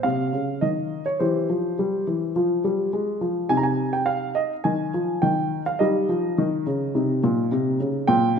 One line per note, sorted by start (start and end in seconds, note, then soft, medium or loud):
0.00 1.16 F4 soft
0.00 0.62 F5 medium
0.04 0.32 C3 soft
0.33 0.61 C#3 soft
0.61 1.04 D#3 soft
0.61 1.05 D#5 medium
1.06 1.20 C#5 medium
1.20 1.48 E3 soft
1.20 2.32 G4 soft
1.20 3.17 C5 medium
1.50 1.77 F3 soft
1.79 2.06 G3 soft
2.07 2.34 E3 soft
2.36 2.63 F3 soft
2.36 3.47 F4 soft
2.64 2.92 G3 soft
2.93 3.20 G#3 soft
3.21 3.49 F3 soft
3.49 4.33 C3 soft
3.49 5.77 D#4 soft
3.49 3.57 G#5 medium
3.57 3.64 A#5 medium
3.63 3.93 G#5 medium
3.93 4.08 G5 medium
4.06 4.36 F5 medium
4.35 4.53 D#5 medium
4.64 4.93 D#3 soft
4.64 5.19 G#5 medium
4.94 5.22 F3 soft
5.22 5.65 D#3 soft
5.22 5.62 G5 medium
5.66 5.81 F5 medium
5.79 6.08 G3 medium
5.79 6.91 D#4 soft
5.79 7.79 D#5 medium
6.09 6.37 F3 soft
6.38 6.65 D#3 medium
6.66 6.94 C#3 soft
6.95 7.22 C3 soft
6.95 8.04 D#4 soft
7.24 7.50 A#2 soft
7.52 7.79 C3 soft
7.80 8.07 C#3 soft
8.07 8.35 A#2 medium
8.07 8.39 G5 medium